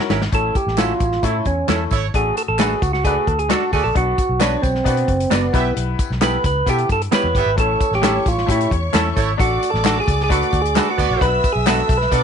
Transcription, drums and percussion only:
0.10 snare, tambourine
0.22 snare
0.32 kick, closed hi-hat, tambourine
0.55 kick, closed hi-hat, tambourine
0.68 snare
0.78 snare, clap, closed hi-hat, tambourine
1.00 kick, closed hi-hat, tambourine
1.12 snare
1.23 kick, closed hi-hat, tambourine
1.45 kick, closed hi-hat, tambourine
1.68 snare, clap, closed hi-hat, tambourine
1.91 kick, closed hi-hat, tambourine
2.14 kick, closed hi-hat
2.37 closed hi-hat, tambourine
2.59 snare, clap, closed hi-hat, tambourine
2.82 kick, closed hi-hat, tambourine
2.94 snare
3.05 kick, closed hi-hat, tambourine
3.27 kick, closed hi-hat
3.39 closed hi-hat
3.50 snare, clap, closed hi-hat, tambourine
3.73 kick, open hi-hat, tambourine
3.95 kick, closed hi-hat
4.18 kick, closed hi-hat, tambourine
4.41 snare, clap, closed hi-hat, tambourine
4.63 kick, closed hi-hat, tambourine
4.75 snare
4.86 kick, closed hi-hat, tambourine
4.97 closed hi-hat
5.08 kick, closed hi-hat
5.20 closed hi-hat
5.31 snare, clap, closed hi-hat, tambourine
5.54 kick, closed hi-hat, tambourine
5.77 closed hi-hat
5.99 kick, closed hi-hat, tambourine
6.12 snare
6.21 snare, clap, closed hi-hat, tambourine
6.44 kick, closed hi-hat, tambourine
6.67 kick, closed hi-hat, tambourine
6.78 closed hi-hat
6.89 kick, closed hi-hat, tambourine
7.01 closed hi-hat
7.12 snare, clap, closed hi-hat, tambourine
7.35 kick, closed hi-hat, tambourine
7.58 kick, closed hi-hat, tambourine
7.80 kick, closed hi-hat, tambourine
7.93 snare
8.03 snare, clap, closed hi-hat, tambourine
8.26 kick, closed hi-hat, tambourine
8.38 snare
8.48 kick, closed hi-hat, tambourine
8.60 closed hi-hat
8.71 kick, closed hi-hat
8.94 snare, clap, closed hi-hat, tambourine
9.17 kick, closed hi-hat, tambourine
9.40 kick, closed hi-hat, tambourine
9.63 closed hi-hat, tambourine
9.75 snare
9.85 snare, clap, closed hi-hat, tambourine
10.08 kick, closed hi-hat, tambourine
10.20 snare
10.30 kick, closed hi-hat, tambourine
10.42 closed hi-hat
10.52 kick, closed hi-hat, tambourine
10.65 closed hi-hat
10.76 snare, clap, closed hi-hat, tambourine
10.98 kick, closed hi-hat, tambourine
11.21 kick, closed hi-hat
11.44 kick, closed hi-hat, tambourine
11.67 snare, clap, closed hi-hat, tambourine
11.89 kick, closed hi-hat, tambourine
12.01 snare
12.12 kick, closed hi-hat, tambourine

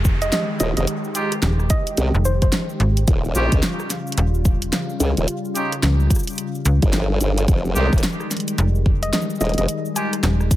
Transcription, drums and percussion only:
0.05 kick, shaker
0.22 closed hi-hat, shaker
0.32 snare, closed hi-hat, shaker
0.60 cross-stick, closed hi-hat, shaker
0.77 closed hi-hat, shaker
0.87 closed hi-hat, shaker
1.04 shaker
1.15 closed hi-hat, shaker
1.32 cross-stick, closed hi-hat, shaker
1.42 snare, closed hi-hat, shaker
1.60 cross-stick, shaker
1.70 kick, closed hi-hat, shaker
1.87 closed hi-hat, shaker
1.97 closed hi-hat, shaker
2.14 shaker
2.25 shaker
2.42 kick, closed hi-hat, shaker
2.52 snare, closed hi-hat, shaker
2.69 shaker
2.80 closed hi-hat
2.97 closed hi-hat, shaker
3.08 kick, closed hi-hat, shaker
3.25 shaker
3.35 closed hi-hat, shaker
3.52 kick, cross-stick, closed hi-hat, shaker
3.63 snare, closed hi-hat, shaker
3.80 cross-stick, shaker
3.90 snare, closed hi-hat, shaker
4.07 shaker
4.12 closed hi-hat
4.18 closed hi-hat, shaker
4.35 shaker
4.45 kick, shaker
4.62 closed hi-hat, shaker
4.73 snare, closed hi-hat, shaker
4.90 shaker
5.00 closed hi-hat, shaker
5.09 cross-stick
5.17 closed hi-hat, shaker
5.28 closed hi-hat, shaker
5.45 shaker
5.55 closed hi-hat, shaker
5.72 cross-stick, closed hi-hat, shaker
5.83 snare, closed hi-hat, shaker
6.00 cross-stick, shaker
6.07 kick, cross-stick, closed hi-hat, shaker
6.15 cross-stick, shaker
6.19 shaker
6.23 shaker
6.27 closed hi-hat, shaker
6.30 shaker
6.33 shaker
6.35 closed hi-hat, shaker
6.38 shaker
6.55 shaker
6.65 closed hi-hat, shaker
6.82 kick, closed hi-hat, shaker
6.93 snare, closed hi-hat, shaker
7.21 closed hi-hat, shaker
7.38 closed hi-hat, shaker
7.48 kick, closed hi-hat, shaker
7.65 shaker
7.76 shaker
7.93 kick, cross-stick, shaker
7.98 closed hi-hat, shaker
8.03 snare, closed hi-hat, shaker
8.13 shaker
8.20 cross-stick, shaker
8.31 snare, closed hi-hat, shaker
8.37 closed hi-hat
8.40 closed hi-hat
8.48 closed hi-hat, shaker
8.58 closed hi-hat, shaker
8.75 shaker
8.86 kick
9.03 closed hi-hat, shaker
9.13 snare, closed hi-hat, shaker
9.22 shaker
9.30 shaker
9.35 shaker
9.41 closed hi-hat, shaker
9.45 closed hi-hat
9.49 cross-stick, closed hi-hat
9.54 closed hi-hat
9.58 closed hi-hat, shaker
9.68 closed hi-hat, shaker
9.86 shaker
9.96 closed hi-hat, shaker
10.13 cross-stick, closed hi-hat, shaker
10.23 snare, closed hi-hat, shaker
10.41 cross-stick, shaker
10.51 kick, closed hi-hat, shaker

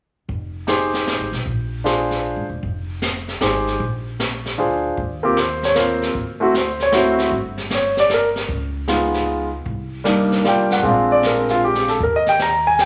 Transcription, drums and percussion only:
0.29 brush sweep, kick
0.68 snare, hi-hat pedal
0.94 snare
1.07 snare, hi-hat pedal
1.33 snare
1.46 brush sweep, kick
1.86 snare, hi-hat pedal
2.11 snare
2.63 brush sweep, kick
3.02 snare, hi-hat pedal
3.28 snare
3.41 snare, hi-hat pedal
3.67 snare
3.80 brush sweep, kick
4.20 snare, hi-hat pedal
4.46 snare
4.97 brush sweep, kick
5.37 snare, hi-hat pedal
5.63 snare
5.75 snare, hi-hat pedal
6.02 snare
6.15 brush sweep, kick
6.54 snare, hi-hat pedal
6.80 snare
6.92 snare, hi-hat pedal
7.19 snare
7.32 brush sweep, kick
7.58 snare
7.70 snare, hi-hat pedal
7.97 snare
8.09 snare, hi-hat pedal
8.36 snare
8.49 brush sweep, kick
8.88 snare, hi-hat pedal
9.14 snare
9.66 brush sweep, kick
10.05 snare, hi-hat pedal
10.32 snare
10.45 snare, hi-hat pedal
10.70 snare
10.83 brush sweep, kick
11.23 snare, hi-hat pedal
11.48 snare
11.75 snare
11.88 snare
12.00 brush sweep, kick
12.26 snare
12.39 snare, hi-hat pedal
12.79 snare, hi-hat pedal

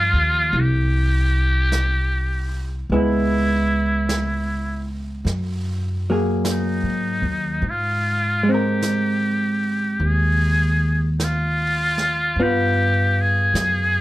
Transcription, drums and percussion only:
0.55 brush sweep
1.72 brush sweep, snare, hi-hat pedal
2.90 brush sweep
4.09 brush sweep, snare, hi-hat pedal
5.27 brush sweep, snare
6.45 brush sweep, snare, hi-hat pedal
7.64 brush sweep
8.82 brush sweep, snare, hi-hat pedal
10.01 brush sweep
11.20 brush sweep, snare, hi-hat pedal
11.98 snare
12.38 brush sweep
13.55 brush sweep, snare, hi-hat pedal

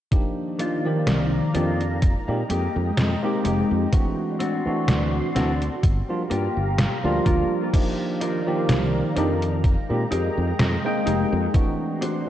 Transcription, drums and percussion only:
0.12 kick, closed hi-hat
0.59 closed hi-hat
1.07 snare, closed hi-hat
1.55 closed hi-hat
1.81 closed hi-hat
2.02 kick, closed hi-hat
2.50 closed hi-hat
2.97 snare, closed hi-hat
3.45 closed hi-hat
3.93 kick, closed hi-hat
4.40 closed hi-hat
4.88 snare, closed hi-hat
5.36 snare, closed hi-hat
5.62 closed hi-hat
5.83 kick, closed hi-hat
6.31 closed hi-hat
6.78 snare, closed hi-hat
7.26 kick, closed hi-hat
7.74 kick, closed hi-hat, crash
8.21 closed hi-hat
8.69 snare, closed hi-hat
9.16 closed hi-hat
9.42 closed hi-hat
9.64 kick, closed hi-hat
10.12 closed hi-hat
10.59 snare, closed hi-hat
11.07 closed hi-hat
11.54 kick, closed hi-hat
12.02 closed hi-hat

